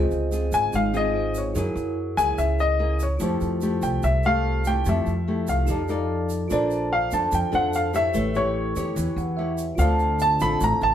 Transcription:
Already playing: C#2 C#3 C4 F4 G#4 C5 D#5
0.11 shaker
0.31 C4 F4 G#4, shaker
0.52 G#1 G#5, shaker
0.73 G#1 G#2 F5, shaker
0.93 C4 F4 G#4 D#5, shaker
1.13 F4 G#4 C5 D#5
1.34 C#5, shaker
1.53 F#2 F#3 A#3 E4 G#4 A#4, shaker
1.59 C#5
1.75 F#2, shaker
2.17 C#2 A#3 E4 G#4 G#5, shaker
2.38 C#2 C#3 E5, shaker
2.59 D#5, shaker
2.79 A#3 E4 G#4
3.00 C#5, shaker
3.18 F2 F3 A3 E4 F4 G4 A4, shaker
3.23 C5
3.41 F2, shaker
3.61 A3 E4 G4, shaker
3.82 C2 G5, shaker
4.03 C2 C3 E5, shaker
4.23 A3 G4 F5, shaker
4.65 A3 E4 G4 G5, shaker
4.85 F2 F3 A3 E4 G4 E5, shaker
5.06 F2, shaker
5.28 A3 E4 G4
5.47 C2 F5, shaker
5.65 F2 F3 D#4 G4 A4, shaker
5.69 D#4 A4 D5
5.88 D#4 A4 D5, shaker
6.29 shaker
6.48 A#1 A#3 D4 F4 A4 C5, shaker
6.52 C5 D5
6.70 shaker
6.93 F5
7.11 F2 D4 A4 C5 A5, shaker
7.32 F2 F3 G5, shaker
7.51 F2 D4 F4 A4 C5 F5, shaker
7.55 F#5
7.73 F5, shaker
7.93 E4 G4 C#5 E5, shaker
8.11 A1 A3 E4 G4 B4, shaker
8.17 C#5
8.35 E4 G4 C#5, shaker
8.76 E2 E4 G4 C#5, shaker
8.96 E2 E3, shaker
9.16 E2 F#5, shaker
9.37 E4 G4 C#5 E5
9.58 shaker
9.75 D2 D3 C4 F4 A4 F5, shaker
9.80 A4 C5 D5
9.99 shaker
10.19 A5, shaker
10.40 A1 C4 F4 A4 B5, shaker
10.60 A1 A2 A#5, shaker
10.81 A1 A5, shaker

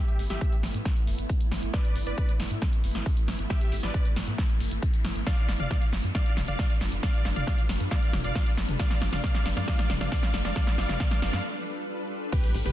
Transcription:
Already playing: A3 B3 E4 G4 E5, riser
0.08 closed hi-hat
0.19 A1, open hi-hat
0.30 A1 G4 E5, snare, closed hi-hat
0.41 kick, closed hi-hat
0.52 closed hi-hat
0.63 A1, snare, open hi-hat
0.74 A2, closed hi-hat
0.85 kick, snare, closed hi-hat
0.96 closed hi-hat
1.07 G1, open hi-hat
1.19 A1, closed hi-hat
1.29 kick, closed hi-hat
1.41 closed hi-hat
1.52 A1, snare, open hi-hat
1.63 A1, closed hi-hat
1.73 B4 D5, kick, snare, closed hi-hat
1.85 closed hi-hat
1.96 A1, open hi-hat
2.07 A1 B4 D5, closed hi-hat
2.18 kick, closed hi-hat
2.29 closed hi-hat
2.40 A1, snare, open hi-hat
2.51 A2, closed hi-hat
2.62 kick, snare, closed hi-hat
2.73 closed hi-hat
2.84 G1, open hi-hat
2.95 A1, snare, closed hi-hat
3.06 kick, open hi-hat
3.17 closed hi-hat
3.28 A1, snare, open hi-hat
3.39 A1, closed hi-hat
3.50 G4 E5, kick, snare, closed hi-hat
3.61 closed hi-hat
3.72 A1, open hi-hat
3.83 A1 B4 D5, snare, closed hi-hat
3.94 kick, closed hi-hat
4.05 closed hi-hat
4.16 A1, snare, open hi-hat
4.27 A2, closed hi-hat
4.38 kick, snare, closed hi-hat
4.49 closed hi-hat
4.60 A1, open hi-hat
4.71 A1, closed hi-hat
4.82 kick, closed hi-hat
4.93 closed hi-hat
5.04 A1, snare, open hi-hat
5.16 A1, closed hi-hat
5.27 G3 D4 F4 A4 B4 D5 F5, kick, snare, closed hi-hat
5.38 closed hi-hat
5.49 G1, snare, open hi-hat
5.60 G1 D5 F5, closed hi-hat, mid tom
5.71 kick, snare, closed hi-hat
5.82 closed hi-hat
5.93 G1, snare, open hi-hat
6.04 G2, closed hi-hat
6.15 D5 F5, kick, snare, closed hi-hat
6.26 closed hi-hat
6.37 F1, snare, open hi-hat, mid tom
6.48 G1 D5 F5, closed hi-hat, mid tom
6.59 kick, snare, open hi-hat
6.70 closed hi-hat
6.81 G1, snare, open hi-hat
6.92 G1, closed hi-hat
7.03 D5 F5, kick, snare, closed hi-hat
7.14 closed hi-hat
7.25 G1, snare, open hi-hat
7.36 G1 D5 F5, closed hi-hat, mid tom
7.47 kick, snare, closed hi-hat
7.58 closed hi-hat
7.69 G1, snare, open hi-hat
7.80 G2, closed hi-hat
7.91 D5 F5, kick, snare, closed hi-hat
8.02 closed hi-hat
8.13 F1, snare, open hi-hat, mid tom
8.24 G1 D5 F5, closed hi-hat
8.35 kick, snare, closed hi-hat
8.46 closed hi-hat
8.57 G1, snare, open hi-hat
8.68 G1, closed hi-hat, mid tom
8.79 D5 F5, kick, snare, closed hi-hat
8.90 snare, closed hi-hat
9.02 G1, snare, open hi-hat
9.13 G1 D5 F5, snare, closed hi-hat, mid tom
9.24 D5 F5, kick, snare, closed hi-hat
9.35 snare, closed hi-hat
9.46 G1, snare, open hi-hat
9.57 G2 D5 F5, snare, closed hi-hat
9.68 D5 F5, kick, snare, closed hi-hat
9.79 snare, closed hi-hat
9.90 F1, snare, open hi-hat, mid tom
10.01 G1 D5 F5, snare, closed hi-hat, mid tom
10.12 D5 F5, kick, snare, open hi-hat
10.23 snare, closed hi-hat
10.34 G1, snare, open hi-hat
10.45 G1 D5 F5, snare, closed hi-hat
10.56 D5 F5, kick, snare, closed hi-hat
10.67 snare, closed hi-hat
10.78 G1 D5 F5, snare, open hi-hat
10.89 G1, snare, closed hi-hat, mid tom
11.00 D5 F5, kick, snare, closed hi-hat
11.11 snare, closed hi-hat
11.22 G1 D5 F5, snare, open hi-hat
11.33 G2, snare, closed hi-hat
12.32 A3 B3 E4 G4 B4, kick, closed hi-hat, crash, impact
12.44 closed hi-hat
12.55 A1, open hi-hat
12.66 A1 G4 B4, closed hi-hat, mid tom

